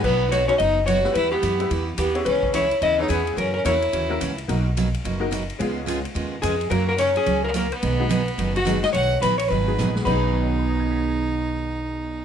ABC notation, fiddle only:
X:1
M:4/4
L:1/8
Q:"Swing" 1/4=215
K:B
V:1 name="Fiddle"
B,2 F C D2 F2 | E B,4 z B,2 | C2 E2 E D B,2 | C C E4- E z |
z8 | z6 G,2 | A, A, C C2 A, A, B,- | B,4- B, F2 d |
f2 B c B3 z | D8- | D8 |]